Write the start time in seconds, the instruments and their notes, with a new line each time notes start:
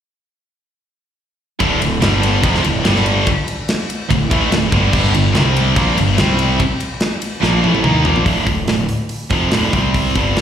1.60 picked electric bass D1, distorted electric guitar D2 A2 D3, kick, ride
1.82 picked electric bass D1, distorted electric guitar D2 A2, ride
2.02 picked electric bass G1, distorted electric guitar G2 D3 G3, snare, ride
2.23 ride
2.43 picked electric bass F1, distorted electric guitar F2 C3 F3, kick, ride
2.54 snare
2.64 picked electric bass D1, distorted electric guitar D2 A2, ride
2.85 picked electric bass G1, distorted electric guitar G2 D3, snare, ride
2.89 distorted electric guitar G3
2.96 snare
3.06 ride
3.27 kick, ride
3.48 ride
3.69 snare, ride
3.90 ride
4.10 picked electric bass D1, distorted electric guitar D2 A2, kick, ride
4.31 picked electric bass A1, distorted electric guitar A2 E3 A3, kick, ride
4.52 picked electric bass D1, distorted electric guitar D2 A2, snare, ride
4.72 picked electric bass G1, distorted electric guitar G2 D3 G3, kick, ride
4.93 picked electric bass G1, distorted electric guitar G2 D3 G3, kick, crash
5.14 picked electric bass G1, distorted electric guitar G2 D3, ride
5.35 picked electric bass C2, distorted electric guitar C3 G3 C4, snare, ride
5.56 ride
5.76 picked electric bass A#1, distorted electric guitar A#2 F3 A#3, kick, ride
5.97 picked electric bass G1, distorted electric guitar G2 D3, ride
6.17 picked electric bass C2, distorted electric guitar C3 G3 C4, snare, ride
6.39 ride
6.60 kick, ride
6.80 ride
7.00 snare, ride
7.22 ride
7.43 picked electric bass A#1, distorted electric guitar A#2 F3 A#3, snare
7.62 picked electric bass A1, distorted electric guitar A2 E3 A3, high tom
7.75 high tom
7.84 picked electric bass D#2, distorted electric guitar D#3 A#3 D#4, mid tom
8.04 picked electric bass A#1, distorted electric guitar A#2 F3 A#3, floor tom
8.16 floor tom
8.25 picked electric bass D1, distorted electric guitar D2 A2 D3, kick, open hi-hat
8.47 picked electric bass D1, distorted electric guitar D2 A2, kick, open hi-hat
8.68 picked electric bass D1, distorted electric guitar D2 A2, snare, open hi-hat
8.89 open hi-hat
9.09 open hi-hat
9.30 picked electric bass F1, distorted electric guitar F2 C3 F3, kick, open hi-hat
9.51 picked electric bass D1, distorted electric guitar D2, snare, open hi-hat
9.56 distorted electric guitar A2 D3
9.73 picked electric bass C2, distorted electric guitar C3 G3 C4, kick, open hi-hat
9.94 kick, open hi-hat
10.16 picked electric bass G1, distorted electric guitar G2 D3 G3, kick, open hi-hat
10.37 picked electric bass D1, snare, open hi-hat